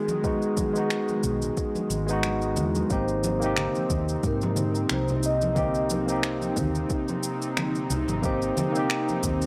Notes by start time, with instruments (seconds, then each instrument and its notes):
Already playing: analog synth pad D#3 G#3, tine electric piano G#3 B3 D#4 F#4, vibraphone G#4
0.08 high conga, cabasa
0.24 tine electric piano G#3 B3 D#4 F#4, kick, low conga, cabasa
0.42 cabasa
0.57 kick, high conga, cabasa
0.73 tine electric piano G#3 B3, cabasa
0.77 tine electric piano D#4 F#4
0.90 finger snap, cabasa
1.08 high conga, cabasa
1.23 fingered electric bass B1, kick, cabasa
1.42 low conga, cabasa
1.57 kick, cabasa
1.75 high conga, cabasa
1.90 fingered electric bass G#1, cabasa
2.07 tine electric piano G#3 B3 D#4, cabasa
2.13 tine electric piano F#4
2.23 finger snap, high conga, cabasa
2.42 cabasa
2.56 fingered electric bass E2, low conga, cabasa
2.75 high conga, cabasa
2.89 fingered electric bass G#1, analog synth pad C3 C4 D#4, tine electric piano A#3 C4 D#4 G4, vibraphone C5, kick, cabasa
3.08 cabasa
3.24 high conga, cabasa
3.39 tine electric piano A#3 C4, cabasa
3.44 tine electric piano D#4 G4
3.56 finger snap, low conga, cabasa
3.75 high conga, cabasa
3.90 fingered electric bass D#2, kick, low conga, cabasa
4.09 cabasa
4.23 fingered electric bass G#2, vibraphone A#4, kick, cabasa
4.41 high conga, cabasa
4.56 low conga, cabasa
4.75 cabasa
4.89 fingered electric bass C2, vibraphone C5, finger snap, high conga, cabasa
5.08 low conga, cabasa
5.23 vibraphone D#5, cabasa
5.41 high conga, cabasa
5.55 tine electric piano A#3 C4 D#4 G4, kick, low conga, cabasa
5.75 cabasa
5.90 high conga, cabasa
6.06 tine electric piano A#3 C4, cabasa
6.10 tine electric piano D#4 G4
6.23 finger snap, cabasa
6.41 high conga, cabasa
6.56 fingered electric bass D#2, kick, low conga, cabasa
6.75 cabasa
6.90 kick, cabasa
7.08 high conga, cabasa
7.23 cabasa
7.42 cabasa
7.57 finger snap, high conga, low conga, cabasa
7.75 cabasa
7.90 fingered electric bass C2, low conga, cabasa
8.08 fingered electric bass G#1, high conga, cabasa
8.22 tine electric piano A#3 C4 D#4 G4, vibraphone C5, kick, cabasa
8.42 cabasa
8.57 high conga, low conga, cabasa
8.72 tine electric piano A#3 C4, cabasa
8.76 tine electric piano D#4 G4
8.90 finger snap, cabasa
9.09 high conga, cabasa
9.23 fingered electric bass D#2, kick, low conga, cabasa
9.42 cabasa